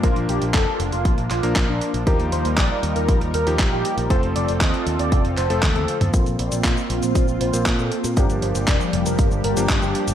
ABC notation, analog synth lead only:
X:1
M:4/4
L:1/16
Q:1/4=118
K:Bb
V:1 name="Analog synth lead"
F z G z A2 z F2 z F2 z D2 z | B z c z d2 z B2 z B2 z G2 z | c z d z e2 z d2 z c2 z A2 z | c z d z e2 z c2 z c2 z A2 z |
B z c z d2 z B2 z B2 z G2 z |]